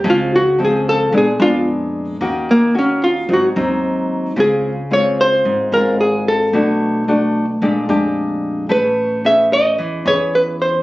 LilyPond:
<<
  \new Staff \with { instrumentName = "Hollow-body jazz guitar" } { \time 4/4 \key bes \minor \tempo 4 = 111 f'8 ges'8 aes'8 a'8 aes'8 f'8 r4 | r8 bes8 des'8 f'8 ges'8 r4. | aes'4 des''8 c''4 bes'8 aes'8 a'8~ | a'4. r2 r8 |
b'4 e''8 ees''4 cis''8 b'8 c''8 | }
  \new Staff \with { instrumentName = "Nylon-string guitar" } { \time 4/4 \key bes \minor << { <f aes c'>8 r8 <f aes c'>4 <aes ces' d'>8 <aes ces' d'>4. | <bes des' ges'>8 r8 <bes des' ges'>4 <ges c' ees'>8 <ges c' ees'>4. | <aes c' f'>8 r8 <aes c' f'>4. <aes c' f'>4. | <a d' ges'>4 <a d' ges'>8 r8 <aes d' g'>8 <aes d' g'>4. |
<cis' gis' b'>4 <cis' gis' b'>4. <cis' gis' b'>4. | } \\ { des2 bes,2 | ees2 aes,2 | des2 aes,2 | ces2 bes,2 |
a2 e2 | } >> }
  \new Staff \with { instrumentName = "Upright bass" } { \clef bass \time 4/4 \key bes \minor des,2 bes,,8 f,4. | ees,2 aes,,8 ees,4. | des,2 aes,,8 aes,,4. | ces,2 bes,,8 f,4. |
a,,2 e,8 e,4. | }
>>